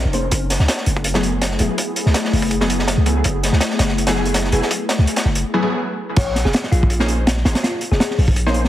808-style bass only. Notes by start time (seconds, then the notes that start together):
0.05 F1
0.32 F#1
0.60 C#2
0.86 F#1
1.60 E1
2.06 C#2
2.33 F#1
2.97 C#2
3.25 F#1
3.52 C#2
3.79 F#1
4.52 E1
4.99 C#2
5.25 F#1
6.17 A#1
6.45 F1
6.72 A#1
7.45 G#1
7.91 F1
8.18 A#1